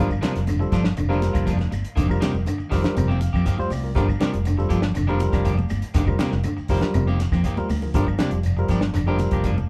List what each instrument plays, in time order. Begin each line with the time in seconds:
0.00 fingered electric bass G1, clean electric guitar D3
0.09 muted clean electric guitar stroke, kick, claves, shekere
0.21 clean electric guitar C3 F3 A#3 D4 F4, tine electric piano G3 C4 F4 A#4, snare, closed hi-hat, high conga, shekere
0.34 fingered electric bass F1, muted clean electric guitar stroke, snare, closed hi-hat, shekere
0.47 clean electric guitar D3, closed hi-hat, high conga, claves, shekere
0.59 tine electric piano G3 C4 F4 A4, muted clean electric guitar stroke, shekere
0.72 fingered electric bass G1, clean electric guitar F3 D4 F4, kick, snare, closed hi-hat, low conga, shekere
0.84 muted clean electric guitar stroke, snare, shekere
0.97 fingered electric bass F1, clean electric guitar D3, muted clean electric guitar stroke, closed hi-hat, claves, shekere
1.09 clean electric guitar D3 F3 A#3 D4 F4, tine electric piano G3 C4 F4 A#4, shekere
1.22 muted clean electric guitar stroke, snare, closed hi-hat, high conga, shekere
1.33 fingered electric bass F1, clean electric guitar A#3 D4 F4, kick, closed hi-hat, claves, shekere
1.46 clean electric guitar F3 A#3 D4 F4, kick, closed hi-hat, low conga, shekere
1.59 muted clean electric guitar stroke, snare, high conga, shekere
1.71 fingered electric bass G1, muted clean electric guitar stroke, closed hi-hat, high conga, claves, shekere
1.85 closed hi-hat, shekere
1.96 fingered electric bass F1, clean electric guitar D3 D#3 A#3 C4 G4, kick, closed hi-hat, low conga, shekere
2.08 tine electric piano G3 C4 F4 A#4, muted clean electric guitar stroke, kick, claves, shekere
2.21 clean electric guitar C3 D#3 A#3 C4 G4, snare, closed hi-hat, high conga, shekere
2.33 fingered electric bass F1, muted clean electric guitar stroke, high conga, shekere
2.46 clean electric guitar D3, closed hi-hat, high conga, claves, shekere
2.58 muted clean electric guitar stroke, muted fingered electric bass stroke, shekere
2.70 fingered electric bass F1, clean electric guitar D#3 C4 G4, tine electric piano G3 C4 F4 A#4 A#5, kick, snare, open hi-hat, low conga, shekere
2.83 muted clean electric guitar stroke, snare, closed hi-hat
2.95 fingered electric bass F1, clean electric guitar C3, tine electric piano G5, muted clean electric guitar stroke, closed hi-hat, claves, shekere
3.08 clean electric guitar C3 D#3 A#3 C4 G4, shekere
3.20 tine electric piano F5, muted clean electric guitar stroke, closed hi-hat, high conga, shekere
3.33 fingered electric bass F2, clean electric guitar A#3 C4 G4, kick, claves, shekere
3.45 clean electric guitar D#3 A#3 C4 G4, tine electric piano F5, kick, closed hi-hat, low conga, shekere
3.57 tine electric piano G3 C4 F4 C5, muted clean electric guitar stroke, muted fingered electric bass stroke, high conga, shekere
3.70 fingered electric bass C2, tine electric piano D5, muted clean electric guitar stroke, open hi-hat, high conga, claves, shekere
3.83 tine electric piano F4 A#4, shekere
3.95 fingered electric bass G1, clean electric guitar D3 F3 A#3 D4 G4, tine electric piano G3 C4 F4 A#4, kick, snare, closed hi-hat, low conga, shekere
4.08 muted clean electric guitar stroke, kick, claves, shekere
4.20 clean electric guitar C3 F3 A#3 D4 G4, tine electric piano G3 C4 F4 A#4, snare, closed hi-hat, high conga, shekere
4.33 fingered electric bass F1, muted clean electric guitar stroke, closed hi-hat, high conga, shekere
4.45 clean electric guitar D3, closed hi-hat, claves, shekere
4.58 tine electric piano G3 C4 F4 A4, muted clean electric guitar stroke, shekere
4.69 fingered electric bass G1, clean electric guitar F3 A#3 D4 G4, kick, closed hi-hat, shekere
4.82 muted clean electric guitar stroke, snare, shekere
4.95 fingered electric bass F1, clean electric guitar D3, muted clean electric guitar stroke, closed hi-hat, claves, shekere
5.07 clean electric guitar D3 F3 A#3 D4 G4, tine electric piano G3 C4 F4 A#4, shekere
5.19 muted clean electric guitar stroke, closed hi-hat, high conga, shekere
5.32 fingered electric bass F1, clean electric guitar A#3 D4 G4, kick, snare, closed hi-hat, claves, shekere
5.45 clean electric guitar F3 A#3 D4 G4, kick, closed hi-hat, low conga, shekere
5.57 muted clean electric guitar stroke, high conga, shekere
5.69 fingered electric bass G1, muted clean electric guitar stroke, closed hi-hat, high conga, claves, shekere
5.81 closed hi-hat, shekere
5.94 fingered electric bass F1, clean electric guitar D3 D#3 A#3 C4 G4, kick, snare, closed hi-hat, low conga, shekere
6.07 tine electric piano G3 C4 F4 A#4, muted clean electric guitar stroke, kick, claves, shekere
6.19 clean electric guitar C3 D#3 A#3 C4 G4, snare, closed hi-hat, high conga, shekere
6.31 fingered electric bass F1, muted clean electric guitar stroke, snare
6.44 clean electric guitar D3, closed hi-hat, high conga, claves, shekere
6.57 muted clean electric guitar stroke, muted fingered electric bass stroke, shekere
6.68 fingered electric bass F1, clean electric guitar D#3 A#3 C4 G4, tine electric piano G3 C4 F4 A#4, kick, open hi-hat, low conga, shekere
6.81 muted clean electric guitar stroke, snare, closed hi-hat, shekere
6.94 fingered electric bass F1, clean electric guitar C3, muted clean electric guitar stroke, closed hi-hat, claves, shekere
7.07 clean electric guitar C3 D#3 A#3 C4 G4, shekere
7.20 muted clean electric guitar stroke, snare, closed hi-hat, high conga, shekere
7.32 fingered electric bass F2, clean electric guitar A#3 C4, muted clean electric guitar stroke, kick, snare, claves, shekere
7.44 clean electric guitar D#3 A#3 C4 G4, kick, closed hi-hat, low conga, shekere
7.57 tine electric piano G3 C4 F4 A#4, muted fingered electric bass stroke, muted clean electric guitar stroke, high conga, shekere
7.69 fingered electric bass D2, muted clean electric guitar stroke, open hi-hat, high conga, claves, shekere
7.82 tine electric piano F4 A#4, low conga, shekere
7.94 fingered electric bass G1, clean electric guitar D3 F3 D4 G4, tine electric piano G3 C4 F4 A#4, muted clean electric guitar stroke, kick, closed hi-hat, low conga, shekere
8.07 muted clean electric guitar stroke, kick, claves, shekere
8.18 clean electric guitar C3 A#3 D4 G4, tine electric piano G3 C4 F4 G4, snare, closed hi-hat, high conga, shekere
8.31 fingered electric bass F1, muted clean electric guitar stroke, closed hi-hat
8.43 closed hi-hat, claves, shekere
8.57 tine electric piano G3 C4 F4 A#4, muted clean electric guitar stroke, shekere
8.68 fingered electric bass G1, clean electric guitar F3 D4 G4, kick, closed hi-hat, shekere
8.81 muted clean electric guitar stroke, snare
8.94 fingered electric bass F1, clean electric guitar D3, muted clean electric guitar stroke, snare, closed hi-hat, claves, shekere
9.06 clean electric guitar D3 F3 A#3 D4 G4, tine electric piano G3 C4 F4 A#4, shekere
9.19 muted clean electric guitar stroke, closed hi-hat, high conga, shekere
9.31 fingered electric bass F1, clean electric guitar A#3 D4 G4, kick, closed hi-hat, claves
9.44 clean electric guitar F3 A#3 D4, kick, closed hi-hat, low conga, shekere
9.57 muted clean electric guitar stroke, high conga, shekere